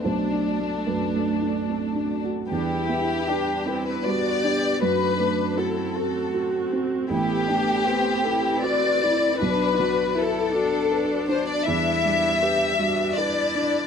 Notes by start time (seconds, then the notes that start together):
0.04 B1 A3 D4 F#4 A4 C5
0.32 D4
0.59 A3
0.87 F#2 B4
1.15 A3
1.42 D4
1.69 C4
1.95 D4
2.24 F#4
2.49 E2 G3 D4 E4 G4 B4
2.89 B3 E4
3.27 D4 G4
3.65 C4 E4 B4
3.87 B4
4.03 G3 B3 F#4 D5
4.43 D4 G4
4.81 F#2 A3 C4 D4 F#4 B4
5.19 A3 D4
5.57 C4 E4 F#4 A4
5.96 F#4 A4
6.34 C4 F#4
6.73 C4
7.09 A1 B3 E4 G4 B4
7.47 A3 D4
7.85 B3 C4 B4
8.24 C4 E4 A4
8.64 F#4 B4 D5
9.03 E4
9.40 B1 B3 D4 F#4 B4 D5
9.77 F#3 F#4
10.15 E4 A4 B4
10.53 D4 F#4
10.91 D4 B4
11.28 D4 C5
11.48 D5
11.66 E2 G3 D4 E4 E5
12.03 G3 D4
12.41 D4 G4 B4
12.79 G3 D4 F#4
13.18 D4 E4 B4 D5
13.55 D4